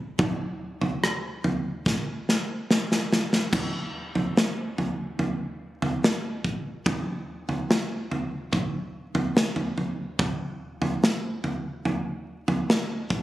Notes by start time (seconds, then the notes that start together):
0.19 kick, floor tom
0.82 floor tom
1.04 cross-stick
1.44 floor tom
1.86 kick, snare
2.29 snare
2.71 snare
2.92 snare
3.13 snare
3.33 snare
3.53 kick, floor tom, crash
4.15 floor tom
4.37 snare
4.78 floor tom
5.19 floor tom
5.82 floor tom
6.04 snare
6.44 kick
6.86 kick, floor tom
7.49 floor tom
7.71 snare
8.12 floor tom
8.53 kick, floor tom
9.15 floor tom
9.37 snare
9.56 floor tom
9.78 floor tom
10.19 kick, floor tom
10.82 floor tom
11.04 snare
11.44 floor tom
11.85 floor tom
12.48 floor tom
12.70 snare
13.10 kick